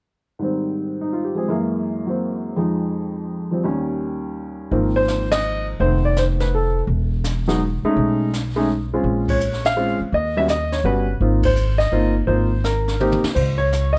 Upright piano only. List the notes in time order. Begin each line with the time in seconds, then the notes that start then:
0.39 G#2 D#3 G3
0.44 C4
1.01 D#4
1.13 F4
1.25 G4
1.35 F3 G#3 C4 G#4
1.48 F#2 E3 G#3 A#3
2.07 F#3 A#3 C4
2.56 F2 F3 G#3 D#4
3.51 F3 G3 C4
3.64 D#2 D#3 G3 C#4
4.71 D#3 F3 A#3 C4
4.96 C5
5.32 D#5
5.80 D#3 A3 B3 C4 C5
6.05 D5
6.18 C5
6.41 B4
6.55 A4
7.48 F#3 G#3 B3 D#4
7.85 G#3 A3 C#4 D#4
8.56 G#3 A3 C#4 D#4
8.94 G#3 C4 C#4 F4
9.30 C#5
9.66 F5
9.76 G#3 C4 C#4 F4
10.14 D#5
10.37 G3 B3 C#4 F#4 E5
10.50 D#5
10.72 C#5
10.85 G3 B3 C#4 F#4 B4
11.21 A#3 C4 D#4 F4
11.45 C5
11.78 D#5
11.92 A#3 C4 D#4 F4
12.27 A#3 C4 D#4 F4 C5
12.65 A#4
13.00 A#3 C4 D#4 G4
13.35 C5
13.58 C#5
13.93 D#5